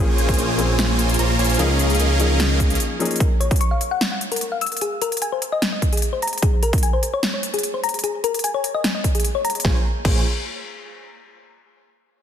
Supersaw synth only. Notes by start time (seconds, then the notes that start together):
0.00 A#3 F4 C5 C#5 G#5
1.19 A#3 F4 C5 C#5 A#5
1.39 A#3 F4 C5 C#5 G#5
1.59 C#4 G#4 A#4 D#5 F5
9.65 A#3 F4 C5 C#5 G#5
10.05 A#3 F4 C5 C#5 G#5